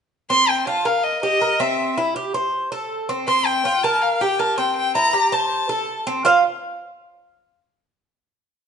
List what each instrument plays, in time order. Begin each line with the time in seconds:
0.30 cuban tres C4, violin C6
0.49 violin G5
0.67 cuban tres F4, violin A5
0.85 cuban tres A#4, violin F5
1.03 violin D#5
1.22 cuban tres G4, violin D#5
1.42 cuban tres A#4
1.59 cuban tres C4, violin E5
1.98 cuban tres E4
2.16 cuban tres G4
2.34 cuban tres C5
2.72 cuban tres A4
3.09 cuban tres C4
3.28 cuban tres C4, violin C6
3.46 violin G5
3.65 cuban tres F4
3.83 cuban tres A#4, violin A5
4.02 violin F5
4.21 cuban tres G4, violin G5
4.39 cuban tres A#4, violin A5
4.58 cuban tres C4, violin G5
4.77 violin G5
4.95 cuban tres E4, violin A#5
5.13 cuban tres G4
5.32 cuban tres C5, violin A5
5.69 cuban tres A4
6.07 cuban tres C4
6.25 cuban tres F4 C5 F5